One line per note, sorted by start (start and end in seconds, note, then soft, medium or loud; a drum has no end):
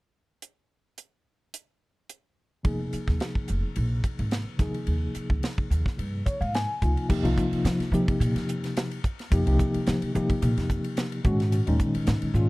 0.42 closed hi-hat soft
0.98 closed hi-hat soft
1.54 closed hi-hat soft
2.09 closed hi-hat soft
2.63 2.87 F1 medium
2.63 4.55 C3 soft
2.63 4.56 F3 soft
2.63 4.56 A#3 soft
2.63 4.56 D#4 soft
2.63 4.57 G#4 medium
2.63 kick medium
2.63 ride medium
2.93 muted upright bass stroke soft
2.93 hi-hat pedal medium
2.93 ride medium
3.07 3.18 D#2 medium
3.07 kick medium
3.07 snare soft
3.07 ride soft
3.20 snare medium
3.20 ride medium
3.35 muted upright bass stroke soft
3.35 kick medium
3.48 3.61 F1 medium
3.48 hi-hat pedal medium
3.48 ride soft
3.76 3.98 A#1 medium
3.76 ride medium
4.04 kick medium
4.04 hi-hat pedal medium
4.04 ride medium
4.19 4.41 G#1 medium
4.19 ride medium
4.31 snare medium
4.31 ride medium
4.57 4.71 D#2 medium
4.57 6.77 C3 medium
4.57 6.77 F3 soft
4.57 6.78 A#3 soft
4.57 6.79 D#4 medium
4.57 6.79 G#4 medium
4.57 kick medium
4.57 snare soft
4.57 hi-hat pedal medium
4.57 ride medium
4.74 ride soft
4.87 5.09 D#2 medium
4.87 ride medium
5.15 muted upright bass stroke soft
5.15 hi-hat pedal medium
5.15 ride soft
5.30 5.40 C#2 medium
5.30 kick medium
5.43 snare medium
5.43 ride medium
5.58 muted upright bass stroke soft
5.58 kick medium
5.70 5.82 D#2 medium
5.70 hi-hat pedal medium
5.70 ride soft
5.86 kick medium
5.86 snare soft
5.98 6.20 G2 medium
5.98 ride medium
6.26 6.40 C#5 medium
6.26 muted upright bass stroke soft
6.26 kick medium
6.26 hi-hat pedal medium
6.26 ride soft
6.41 6.63 G#2 medium
6.41 6.53 F5 medium
6.41 ride soft
6.54 7.06 G#5 medium
6.54 snare medium
6.54 ride medium
6.82 6.94 C#2 medium
6.82 7.07 C3 soft
6.82 7.08 F3 soft
6.82 7.08 A#3 soft
6.82 7.08 D#4 soft
6.82 7.10 F4 soft
6.82 kick medium
6.82 hi-hat pedal medium
6.82 ride medium
6.97 ride soft
7.08 7.22 F2 medium
7.08 7.22 C3 medium
7.08 7.22 F3 medium
7.08 7.23 A#3 medium
7.08 7.24 D#4 medium
7.08 7.24 G4 medium
7.08 kick medium
7.08 crash medium
7.23 7.34 C2 medium
7.23 7.88 C3 medium
7.23 7.89 F3 medium
7.23 7.89 A#3 medium
7.23 7.89 D#4 medium
7.23 7.89 F4 medium
7.23 ride medium
7.38 kick medium
7.38 hi-hat pedal medium
7.52 muted upright bass stroke soft
7.52 ride medium
7.65 7.77 F3 medium
7.65 snare loud
7.65 hi-hat pedal medium
7.65 ride medium
7.79 muted upright bass stroke soft
7.79 snare soft
7.79 ride medium
7.92 8.97 C3 medium
7.92 8.04 F3 medium
7.92 8.97 F3 medium
7.92 8.98 A#3 medium
7.92 8.98 D#4 medium
7.92 8.98 G4 medium
7.92 hi-hat pedal medium
8.08 kick medium
8.08 ride medium
8.20 8.32 A#2 medium
8.20 hi-hat pedal medium
8.20 ride medium
8.35 8.57 F2 medium
8.35 snare soft
8.35 ride medium
8.49 hi-hat pedal medium
8.64 snare soft
8.64 ride medium
8.77 snare loud
8.77 hi-hat pedal medium
8.77 ride medium
8.91 ride medium
9.04 kick medium
9.04 hi-hat pedal medium
9.19 snare soft
9.19 ride medium
9.31 9.43 F2 medium
9.31 9.45 C3 medium
9.31 9.45 F3 medium
9.31 9.46 A#3 medium
9.31 9.46 D#4 medium
9.31 9.46 G4 medium
9.31 kick medium
9.31 hi-hat pedal medium
9.31 ride medium
9.46 9.56 C2 medium
9.46 10.10 C3 medium
9.46 10.10 F3 medium
9.46 10.11 A#3 medium
9.46 10.11 D#4 medium
9.46 10.11 G4 medium
9.46 ride medium
9.59 kick medium
9.59 hi-hat pedal medium
9.74 muted upright bass stroke soft
9.74 ride medium
9.87 9.99 F3 medium
9.87 snare loud
9.87 hi-hat pedal medium
9.87 ride medium
10.02 muted upright bass stroke soft
10.02 ride medium
10.14 11.19 C3 medium
10.14 11.19 F3 medium
10.14 10.27 F3 medium
10.14 11.19 A#3 medium
10.14 11.19 D#4 medium
10.14 11.19 G4 medium
10.14 hi-hat pedal medium
10.30 kick medium
10.30 ride medium
10.42 10.54 A#2 medium
10.42 hi-hat pedal medium
10.42 ride medium
10.57 10.79 F2 medium
10.57 snare soft
10.57 ride medium
10.70 kick medium
10.70 hi-hat pedal medium
10.84 ride medium
10.97 snare loud
10.97 hi-hat pedal medium
10.97 ride medium
11.12 ride medium
11.24 11.58 G#2 loud
11.24 11.64 A#2 medium
11.24 11.65 D#3 medium
11.24 11.65 G#3 medium
11.24 11.65 C#4 medium
11.24 11.65 F#4 medium
11.24 kick loud
11.24 hi-hat pedal medium
11.40 snare soft
11.40 ride medium
11.52 hi-hat pedal medium
11.52 ride medium
11.66 11.77 D#2 medium
11.66 12.31 A#2 medium
11.66 12.31 D#3 medium
11.66 12.31 G#3 medium
11.66 12.32 C#4 medium
11.66 12.32 D#4 medium
11.66 ride medium
11.80 kick medium
11.80 hi-hat pedal medium
11.95 muted upright bass stroke soft
11.95 ride medium
12.07 12.19 G#2 medium
12.07 snare medium
12.07 hi-hat pedal medium
12.07 ride medium
12.22 muted upright bass stroke soft
12.22 ride medium
12.34 12.46 G#2 medium
12.34 12.49 A#2 medium
12.34 12.49 D#3 medium
12.34 12.49 G#3 medium
12.34 12.49 C#4 medium
12.34 12.49 F4 medium
12.34 hi-hat pedal medium